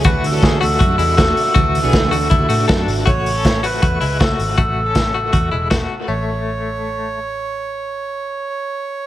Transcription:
<<
  \new Staff \with { instrumentName = "Melodica" } { \time 4/4 \key a \major \tempo 4 = 159 b'8 a'8 gis'8 a'2~ a'8~ | a'2. r4 | cis''4. b'4. a'4 | a'2. r4 |
cis''1~ | cis''1 | }
  \new Staff \with { instrumentName = "Clean electric guitar" } { \time 4/4 \key a \major <a fis'>8. <cis' a'>8. <a fis'>8 <a fis'>8 <gis e'>8 <a fis'>4 | <a fis'>8. <b gis'>8. <a fis'>8 <a e'>8 <a fis'>8 <d' a'>4 | <a fis'>8. <cis' a'>8. <a fis'>8 <a fis'>8 <gis e'>8 <a fis'>4 | <a fis'>8. <cis' a'>8. <a fis'>8 <a fis'>8 <gis e'>8 <a fis'>4 |
a2. r4 | r1 | }
  \new Staff \with { instrumentName = "Steel-string acoustic guitar" } { \time 4/4 \key a \major <d e a d' fis'>8. <d e a d' fis'>8 <a d' fis'>4 <a d' fis'>8 <a d' fis'>8 <a d' fis'>8. | <d e a d' fis'>8. <d e a d' fis'>8 <a d' fis'>4 <a d' fis'>8 <a d' fis'>8 <a d' fis'>8. | r1 | r1 |
r1 | r1 | }
  \new Staff \with { instrumentName = "Picked electric bass" } { \clef bass \time 4/4 \key a \major d,8 d,8 d8 d,8 fis,8 e,4 r8 | d,8. b,,16 cis,8 d,8 d,8 a,8 fis,8 gis,,8 | a,,2 e,8 cis,4 gis,,8 | a,,2 e,8 e,,4 r8 |
a,,1~ | a,,1 | }
  \new DrumStaff \with { instrumentName = "Drums" } \drummode { \time 4/4 <hh bd>8 hho8 <hh bd sn>8 hho8 <hh bd>8 hho8 <hh bd sn>8 hho8 | <hh bd>8 hho8 <hh bd sn>8 hho8 <hh bd>8 hho8 <hh bd sn>8 hho8 | <hh bd>8 hho8 <hh bd sn>8 hho8 <hh bd>8 hho8 <hh bd sn>8 hho8 | <hh bd>4 <hh bd sn>4 <hh bd>4 <hh bd sn>4 |
r4 r4 r4 r4 | r4 r4 r4 r4 | }
>>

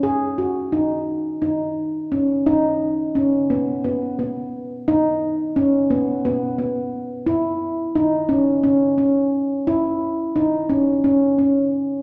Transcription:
\new Staff \with { instrumentName = "Handpan" } { \time 7/8 \key b \major \tempo 4 = 87 gis'8 fis'8 dis'4 dis'4 cis'8 | dis'4 cis'8 b8 b8 b4 | dis'4 cis'8 b8 b8 b4 | e'4 dis'8 cis'8 cis'8 cis'4 |
e'4 dis'8 cis'8 cis'8 cis'4 | }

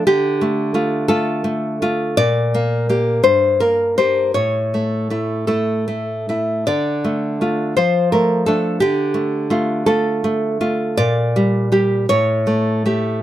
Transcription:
\new Staff \with { instrumentName = "Nylon-string guitar" } { \time 6/8 \key d \minor \tempo 4. = 55 << { g'4. a'4. | d''4. c''8 bes'8 c''8 | cis''4. a'4. | d''4. c''8 bes'8 a'8 |
g'4. a'4. | d''4. cis''4. | } \\ { d8 a8 <a f'>8 <a f'>8 a8 <a f'>8 | bes,8 bes8 <bes g'>8 g,8 bes8 <bes g'>8 | a,8 a8 <a e'>8 <a e'>8 a8 <a e'>8 | d8 a8 <a f'>8 f8 a8 <a d'>8 |
d8 a8 <a f'>8 <a f'>8 a8 <a f'>8 | bes,8 g8 <g g'>8 a,8 a8 <a g'>8 | } >> }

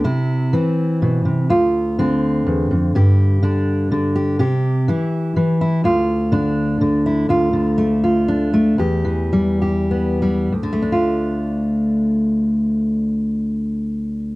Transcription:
\new Staff \with { instrumentName = "Steel-string acoustic guitar" } { \clef bass \time 3/4 \key d \dorian \tempo 4 = 124 << { e'4 c'2 | f'4 c'2 | g'4 d'4. g'8 | g'4 e'4. e'8 |
f'4 d'4. e'8 | f'4 a8 f'8 d'8 a8 | g'4 g8 g'8 b8 g8 | <d a d' f'>2.~ |
<d a d' f'>2. | } \\ { c4 e4 b,8 c8 | d,4 d4 e,8 f,8 | g,4 d4 d4 | c4 e4 e4 |
d,4 d4 d4 | d,8 d2~ d8 | e,8 e2~ e8 | d,2.~ |
d,2. | } >> }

